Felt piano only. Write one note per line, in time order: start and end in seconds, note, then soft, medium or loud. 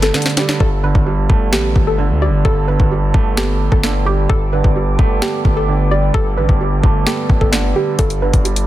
0.00 0.60 G2 medium
0.00 0.14 D3 medium
0.00 0.37 G3 medium
0.00 0.60 A3 medium
0.00 0.60 B3 medium
0.14 0.60 D3 medium
0.37 0.60 G3 medium
0.60 1.76 G2 medium
0.83 1.97 D3 medium
1.06 2.20 G3 medium
1.29 2.45 A3 loud
1.53 2.68 B3 medium
1.98 2.67 D3 loud
2.22 2.90 G3 medium
2.46 3.61 G2 medium
2.69 3.82 D3 medium
2.91 4.04 G3 medium
3.15 4.30 A3 loud
3.37 4.29 B3 medium
3.83 4.30 D3 loud
4.06 4.29 G3 medium
4.29 5.45 G2 medium
4.52 5.67 D3 medium
4.76 5.90 G3 medium
4.98 6.14 A3 loud
5.22 6.37 B3 medium
5.68 6.36 D3 medium
5.91 6.59 G3 medium
6.14 7.30 G2 medium
6.37 7.50 D3 medium
6.60 7.74 G3 medium
6.84 7.99 A3 medium
7.06 7.99 B3 medium
7.52 7.98 D3 medium
7.76 7.99 G3 medium
7.99 8.67 G2 medium
8.22 8.67 D3 medium
8.45 8.67 G3 medium